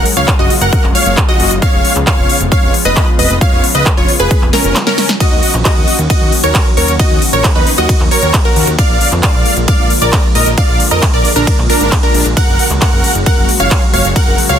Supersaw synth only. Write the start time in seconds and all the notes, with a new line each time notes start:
0.17 C#5 F5
0.39 F#4 D#5
0.61 A#4 F#5
0.95 C#5 F5
1.28 F#4 D#5
1.62 C#5 F5
2.07 C#5 F5
2.52 C#5 F5
2.85 B4 D#5
3.19 B4 D#5
3.41 C#5 F5
3.75 B4 D#5
3.97 F4 C#5
4.20 G#4 B4
4.53 C#4 A#4
4.87 C#4 A#4
5.21 F#4 D#5
5.65 F#4 D#5
6.10 F#4 D#5
6.44 A#4 C#5
6.77 A#4 C#5
7.00 F#4 D#5
7.33 A#4 C#5
7.56 D#4 B4
7.78 F#4 D#5
8.12 A#4 C#5
8.45 F#4 A#4
8.78 D5 F5
9.23 D5 F5
9.68 D5 F5
10.02 A#4 D5
10.35 A#4 D#5
10.57 D5 F5
10.91 A#4 D#5
11.13 A#4 D5
11.36 D4 A#4
11.69 D4 A#4
12.03 D4 A#4
12.37 A#4 F#5
12.81 A#4 F#5
13.26 A#4 F#5
13.60 C#5 F5
13.94 C#5 F5
14.16 A#4 F#5
14.49 C#5 F5